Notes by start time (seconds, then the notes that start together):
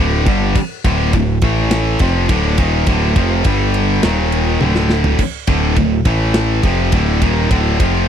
Already playing: D1 D2
0.00 A2 D3
0.26 G1 G2 D3 G3, kick, ride
0.55 kick, crash
0.84 D1 D2 A2 D3, kick, ride
1.13 D1 D2 A2, kick, ride
1.42 A1 A2 E3 A3, kick, ride
1.71 snare, ride
1.99 F1 F2 C3 F3, kick, ride
2.29 D1 D2 A2 D3, kick, ride
2.58 D#1 D#2 A#2 D#3, kick, ride
2.86 D1 D2 A2 D3, kick, ride
3.16 F1 F2 C3 F3, kick, ride
3.44 G1 G2 D3 G3, kick, ride
3.74 ride
4.03 D#1 D#2 A#2 D#3, snare, ride
4.32 ride
4.61 D1 D2 A2 D3, high tom
4.75 snare
4.90 snare
5.04 floor tom
5.19 kick, crash
5.47 D1 D2 A2 D3, kick, ride
5.76 D1 D2 A2, kick, ride
6.05 A1 A2 E3 A3, kick, ride
6.34 snare, ride
6.63 F1 F2 C3 F3, kick, ride
6.92 D1 D2 A2 D3, kick, ride
7.22 D#1 D#2 A#2 D#3, kick, ride
7.50 D1 D2 A2 D3, kick, ride
7.79 F1 F2 C3 F3, kick, ride